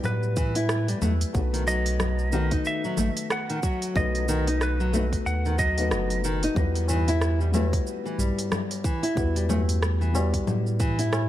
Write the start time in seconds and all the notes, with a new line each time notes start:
Already playing: F#3 G3 B3 E4 B4
0.04 A2 B4, low conga, shaker
0.23 shaker
0.36 E3, kick, shaker
0.55 E4, open hi-hat, shaker
0.69 cross-stick, shaker
0.88 G3, open hi-hat, shaker
1.02 E2 A3, low conga, shaker
1.21 open hi-hat, shaker
1.33 B1 A3 B3 D#4 F#4, kick, shaker
1.37 B4
1.53 D#3, open hi-hat, shaker
1.67 F#3 D#5, shaker
1.86 open hi-hat, shaker
2.00 cross-stick, low conga, shaker
2.19 shaker
2.31 D#3 A3 B3 F#4 B4, shaker
2.51 D#4, kick, open hi-hat, shaker
2.65 E5, shaker
2.84 F#3, shaker
2.97 A1 A3, low conga, shaker
3.17 open hi-hat, shaker
3.30 F#5, cross-stick, shaker
3.50 D#3, open hi-hat, shaker
3.63 F#3, kick, shaker
3.82 open hi-hat, shaker
3.94 B1 A3 B3 D#4 F#4 B4 D#5, kick, low conga, shaker
4.15 open hi-hat, shaker
4.28 D#3, shaker
4.47 D#4, open hi-hat, shaker
4.61 B4, cross-stick, shaker
4.80 F#3, shaker
4.92 A3 B3 D#4 F#4 B4, low conga, shaker
5.13 kick, open hi-hat, shaker
5.26 D#2 F#5, shaker
5.45 D#3, shaker
5.59 F#3 D#5, kick, shaker
5.76 A3 B3 D#4 F#4 B4, open hi-hat, shaker
5.91 F#1, cross-stick, low conga, shaker
6.10 open hi-hat, shaker
6.24 D#3, shaker
6.43 D#4, open hi-hat, shaker
6.54 E2 G3 B3 E4 F#4, kick, low conga, shaker
6.59 B4
6.75 open hi-hat, shaker
6.88 E3, tabla na, tabla tin, tabla ge, shaker
7.08 E4, open hi-hat, shaker
7.21 cross-stick, shaker
7.41 G3, shaker
7.52 G3 A3 B3 E4 F#4, tabla na, low conga, shaker
7.56 B4
7.73 kick, open hi-hat, tabla tin, shaker
7.87 shaker
8.05 E3, shaker
8.18 B1 G3, tabla ge, shaker
8.38 open hi-hat, tabla tin, tabla ge, shaker
8.52 cross-stick, low conga, shaker
8.71 open hi-hat, tabla tin, shaker
8.84 E3, kick, shaker
9.03 E4, open hi-hat, shaker
9.15 E2 G3 B3 E4 F#4, kick, shaker
9.19 B4
9.36 G3, open hi-hat, shaker
9.49 A3, tabla na, tabla ge, low conga, shaker
9.69 open hi-hat, shaker
9.82 cross-stick, shaker
10.01 E3, shaker
10.13 G3 B3 E4 F#4 B4, tabla na, shaker
10.34 kick, open hi-hat, shaker
10.47 A2, low conga, shaker
10.67 shaker
10.80 E3, kick, tabla ge, shaker
10.99 E4, open hi-hat, shaker
11.13 cross-stick, tabla na, shaker